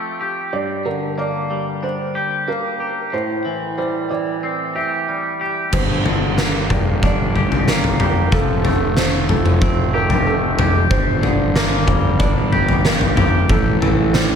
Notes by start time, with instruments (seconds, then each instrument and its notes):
Already playing: clean electric guitar F3 A3 C4 G4
0.21 clean electric guitar G4
0.53 clean electric guitar G2, felt piano D5
0.85 clean electric guitar D3, felt piano A#4
1.18 clean electric guitar A#3, felt piano D5
1.50 clean electric guitar G3
1.83 clean electric guitar D4, felt piano C5
2.15 clean electric guitar G4
2.48 clean electric guitar A#3, felt piano A#4
2.80 clean electric guitar G4
3.13 clean electric guitar A2, felt piano C5
3.45 clean electric guitar E3
3.78 clean electric guitar G3, felt piano C5
4.10 clean electric guitar E3, felt piano D5
4.43 clean electric guitar C4
4.75 clean electric guitar G4, felt piano E5
5.08 clean electric guitar G3
5.41 clean electric guitar G4
5.73 fingered electric bass G1, clean electric guitar G2, felt piano C5, kick, floor tom, crash
6.06 clean electric guitar D3, floor tom
6.38 clean electric guitar A#3, felt piano A#4, snare
6.70 clean electric guitar G3, kick, floor tom, mid tom
7.03 clean electric guitar D4, felt piano D5, kick, floor tom
7.36 clean electric guitar G4, floor tom
7.52 floor tom
7.68 clean electric guitar A#3, felt piano A#4, snare
7.84 floor tom
8.00 clean electric guitar G4, floor tom, mid tom
8.32 fingered electric bass F1, clean electric guitar F3, felt piano A4, kick, floor tom
8.65 clean electric guitar A3, floor tom
8.97 felt piano C5, snare
9.29 clean electric guitar F3, felt piano A4, floor tom
9.46 mid tom
9.62 clean electric guitar C4, kick, floor tom
9.94 clean electric guitar G4, felt piano A#4
10.10 floor tom
10.26 clean electric guitar A3, felt piano A4
10.59 clean electric guitar G4, floor tom, mid tom
10.90 fingered electric bass G1, clean electric guitar G2, felt piano C5, kick, floor tom
11.23 clean electric guitar D3, floor tom
11.55 clean electric guitar A#3, felt piano A#4, snare
11.87 clean electric guitar G3, kick, floor tom, mid tom
12.20 clean electric guitar D4, felt piano D5, kick, floor tom
12.52 clean electric guitar G4, floor tom
12.69 floor tom
12.84 clean electric guitar A#3, felt piano A#4, snare
13.01 floor tom
13.16 clean electric guitar G4, floor tom, mid tom
13.49 fingered electric bass A1, clean electric guitar A2, felt piano A4, kick, floor tom
13.82 clean electric guitar E3, floor tom
14.14 clean electric guitar G3, felt piano C5, snare